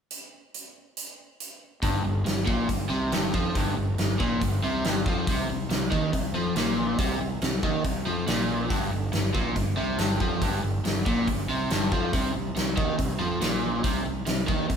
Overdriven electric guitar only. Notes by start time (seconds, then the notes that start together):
1.83 G2
2.05 G2
2.26 G2
2.46 A#2
2.68 G2
2.90 C3
3.12 G2
3.34 F3
3.56 G2
3.77 G2
4.00 G2
4.20 A#2
4.42 G2
4.63 C3
4.85 G2
5.07 F3
5.29 C3
5.50 C3
5.71 C3
5.91 D#3
6.13 C3
6.35 F3
6.56 A#2
6.99 C3
7.21 C3
7.43 C3
7.64 D#3
7.85 C3
8.06 F3
8.27 A#2
8.70 G2
8.92 G2
9.13 G2
9.34 A#2
9.55 G2
9.77 C3
9.98 G2
10.21 F3
10.41 G2
10.63 G2
10.85 G2
11.07 A#2
11.28 G2
11.49 C3
11.71 G2
11.92 F3
12.14 C3
12.34 C3
12.56 C3
12.77 D#3
12.98 C3
13.19 F3
13.41 A#2
13.84 C3
14.06 C3
14.27 C3
14.48 D#3
14.69 C3